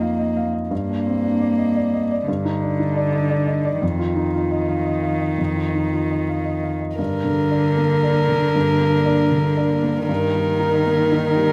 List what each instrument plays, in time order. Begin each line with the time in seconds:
Already playing: grand piano F2 D#4 F4 D#5, cello A#3
0.01 grand piano F5
0.19 grand piano D#5
0.37 grand piano F5
0.53 grand piano D#5
0.70 grand piano G2, cello A#3
0.90 grand piano D4
1.06 grand piano C4
1.24 grand piano D4
1.41 grand piano D5
1.58 grand piano D#5
1.76 grand piano D5
1.94 grand piano D#5
2.11 grand piano D5
2.28 grand piano G2, cello D3
2.45 grand piano D#4
2.62 grand piano D4
2.79 grand piano D#4
2.96 grand piano D5
3.13 grand piano D#5
3.30 grand piano D5
3.47 grand piano D#5
3.65 grand piano D5
3.80 grand piano F2, cello D#3
3.99 grand piano F4
4.16 grand piano D#4
4.34 grand piano F4
4.51 grand piano D#5
4.68 grand piano F5
4.86 grand piano D#5
5.03 grand piano F5
5.20 grand piano D#5
5.38 grand piano F2
5.56 grand piano F4
5.75 grand piano D#4
5.93 grand piano F4
6.11 grand piano D#5
6.29 grand piano F5
6.45 grand piano D#5
6.63 grand piano F5
6.81 grand piano D#5
6.97 grand piano G2, cello D3, ambient pad A#3 D4 A#4, violin A#4
7.24 grand piano D3
7.51 grand piano D4 D5
7.77 grand piano A#3
8.03 grand piano D4 D5
8.29 grand piano D3
8.55 grand piano G2
8.80 grand piano A#3
9.05 grand piano D4 D5
9.31 grand piano D3
9.56 grand piano D4 D5
9.83 grand piano A#3
10.08 grand piano G2, cello D#3, ambient pad D#4, violin A#4
10.34 grand piano G3
10.60 grand piano D#4 A#4
10.86 grand piano A#3
11.12 grand piano D#4 A#4
11.37 grand piano G3